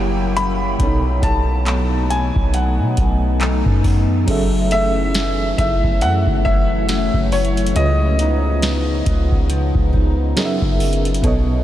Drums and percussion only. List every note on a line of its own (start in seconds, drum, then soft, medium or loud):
0.37 closed hi-hat medium
0.80 kick loud
0.80 closed hi-hat medium
1.22 kick medium
1.22 closed hi-hat medium
1.66 clap loud
1.66 closed hi-hat medium
2.10 closed hi-hat medium
2.36 kick medium
2.54 closed hi-hat medium
2.97 kick medium
2.97 closed hi-hat medium
3.41 clap loud
3.41 closed hi-hat medium
3.66 kick medium
3.84 kick medium
3.84 open hi-hat medium
4.28 kick loud
4.28 closed hi-hat medium
4.28 crash loud
4.71 closed hi-hat medium
5.14 snare loud
5.14 closed hi-hat medium
5.58 kick medium
5.58 closed hi-hat medium
5.84 kick medium
6.01 closed hi-hat medium
6.27 kick medium
6.45 kick medium
6.89 snare loud
6.89 closed hi-hat medium
7.14 kick loud
7.32 closed hi-hat soft
7.32 open hi-hat medium
7.45 closed hi-hat soft
7.57 closed hi-hat medium
7.67 closed hi-hat medium
7.76 closed hi-hat medium
8.19 closed hi-hat medium
8.62 snare loud
8.62 closed hi-hat medium
9.06 kick medium
9.06 closed hi-hat medium
9.32 kick medium
9.50 closed hi-hat medium
9.75 kick medium
9.93 kick loud
10.37 snare loud
10.37 closed hi-hat medium
10.62 kick medium
10.80 closed hi-hat soft
10.80 open hi-hat medium
10.93 closed hi-hat medium
11.05 closed hi-hat medium
11.14 closed hi-hat medium
11.23 kick loud
11.23 closed hi-hat medium